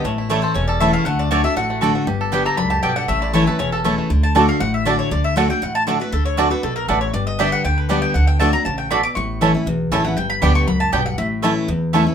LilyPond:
<<
  \new Staff \with { instrumentName = "Mandolin" } { \time 4/4 \key d \major \tempo 4 = 237 cis''8 r8 d''8 c''8 cis''8 d''8 e''8 f''8 | fis''8 d''8 cis''8 e''8 fis''4. r8 | r4. bes''8 b''8 a''8 g''8 fis''8 | e''8 d''8 cis''8 b'8 cis''8 a'8 r4 |
r8 a''8 g''8 f''8 fis''8 e''8 d''8 cis''8 | d''8 e''8 fis''8 g''8 fis''8 a''8 r8 b'8 | a'8 cis''8 d''8 b'8 a'8 bes'8 b'8 cis''8 | d''8 dis''8 e''8 fis''8 g''8 b'8 d''8 g''8 |
fis''8 g''8 a''8 bes''8 a''8 g''8 b''8 d'''8 | cis'''2 r4 a''8 fis''8 | g''8 b''8 d'''8 cis'''8 b''8 a''8 g''8 fis''8 | e''8 r2. r8 | }
  \new Staff \with { instrumentName = "Mandolin" } { \time 4/4 \key d \major r4 <a e' cis'' a''>8 r4. <a e' cis'' a''>8 r8 | r4 <a fis' d'' a''>8 r4. <a fis' d'' a''>8 r8 | r4 <b g' d'' g''>8 r4. <b g' d'' g''>8 r8 | r4 <a e' cis'' a''>8 r4. <a e' cis'' a''>8 r8 |
r4 <a fis' d'' a''>8 r4. <a fis' d'' a''>8 r8 | r4 <a fis' d'' a''>8 r4. <a fis' d'' a''>8 r8 | r4 <a fis' d'' a''>8 r4. <a fis' d'' a''>8 r8 | r4 <b g' d'' g''>8 r4. <b g' d'' g''>8 r8 |
r4 <a fis' d'' a''>8 r4. <a fis' d'' a''>8 r8 | r4 <a e' cis'' a''>8 r4. <a e' cis'' a''>8 r8 | r4 <b g' d'' g''>8 r4. <b g' d'' g''>8 r8 | r4 <a e' cis'' a''>8 r4. <a e' cis'' a''>8 r8 | }
  \new Staff \with { instrumentName = "Five-string banjo" } { \time 4/4 \key d \major a8 e'8 a8 a'8 cis'8 a'8 e'8 a8 | a4 d'8 a'8 fis'8 a8 a'8 fis'8 | g'8 a'8 g'8 a'8 d'8 g'8 a'8 d'8 | a8 e'8 a8 a'8 cis'8 a'8 e'8 a8 |
r4 <a d' fis'>8 r4. <a d' fis'>8 r8 | r4 <a d' fis'>8 r4. <a d' fis'>8 r8 | r4 <a d' fis'>8 r4. <a d' fis'>8 r8 | r4 <b d' g'>8 r4. <b d' g'>8 r8 |
r4 <a d' fis'>8 r4. <a d' fis'>8 r8 | r4 <a cis' e'>8 r4. <a cis' e'>8 r8 | r4 <b d' g'>8 r4. <b d' g'>8 r8 | r4 <a cis' e'>8 r4. <a cis' e'>8 r8 | }
  \new Staff \with { instrumentName = "Steel-string acoustic guitar" } { \time 4/4 \key d \major << { r4 <e a cis' e'>4 r4 <e a cis' e'>4 | r4 <d a d' fis'>8 <d' fis'>8 r4 <d a d' fis'>4 | r4 <d g b g'>4 r2 | r4 <e a cis' e'>8 <cis' e'>8 r4 <e a cis' e'>4 |
r4 <d a d' fis'>4 r4 <d a d' fis'>4 | r4 <d a d' fis'>8 <d' fis'>8 r4 <d a d' fis'>8 <d' fis'>8 | r4 <d a d' fis'>8 <d' fis'>8 r2 | r4 <d g b g'>4 r4 <d g b g'>4 |
r4 <d a d' fis'>8 <d' fis'>8 r2 | r4 <e a cis' e'>8 <cis' e'>8 r4 <e a cis' e'>8 <cis' e'>8 | r4 <d g b g'>4 r2 | r4 <e a cis' e'>4 r4 <e a cis' e'>8 <cis' e'>8 | } \\ { a,2 e,2 | d2 a,2 | g,2 fis,4 g,4 | a,2 e,2 |
d2 a,2 | d2 a,2 | d2 b,4 a,4 | g,2 d2 |
d2 cis4 b,4 | a,2 e,2 | g,2 fis,4 g,4 | a,2 e,2 | } >> }
  \new Staff \with { instrumentName = "Upright bass" } { \clef bass \time 4/4 \key d \major a,,2 e,,2 | d,2 a,,2 | g,,2 cis,4 b,,4 | a,,2 e,,2 |
d,2 a,,2 | d,2 a,,2 | d,2 b,,4 a,,4 | g,,2 d,2 |
d,2 a,,2 | a,,2 b,,4 a,,4 | g,,4 d,4 cis,4 b,,4 | a,,2 e,2 | }
>>